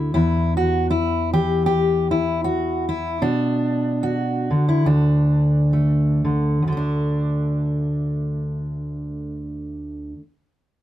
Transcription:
Already playing: D2 D3 E4 F#4
0.14 E2 E4
0.57 F#4
0.90 E4
1.33 E3 G4
1.66 G4
2.11 E4
2.44 F#4
2.89 E4
3.22 B2 D4
4.03 F#4
4.50 D3
4.69 E4
4.86 D2 D4
5.73 A3
6.25 D3
6.62 D2
6.68 D3
6.72 A3
6.77 D4

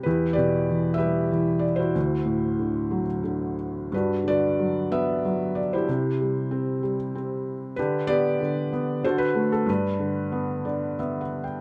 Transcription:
0.03 E2 E4 G4 B4
0.33 G4 B4 D5
0.38 B2
0.70 E3
0.94 B4 E5
0.98 G3 G4
1.32 E3
1.59 D5
1.76 E4 F#4 C5
1.95 D2
2.26 A2
2.59 D3
2.91 F#3
3.23 D3
3.92 G2 D4 B4
3.96 F#4
4.24 D3 D5
4.28 F#4 B4
4.60 F#3
4.91 B3 B4 E5
5.25 F#3
5.55 D5
5.73 E4 G4 C5
5.89 C3
6.20 G3
6.51 C4
6.83 G3
7.15 C4
7.76 D3 D4 G4 B4
8.07 B3 G4 B4 D5
8.40 D3
8.72 B3
9.03 D3 F#4 A4 C5
9.18 B4
9.35 A3
9.52 A4
9.66 G2 D4 B4
9.99 D3
10.32 B3
10.65 D3 D5
10.99 B3 E5
11.21 F#5
11.44 G5

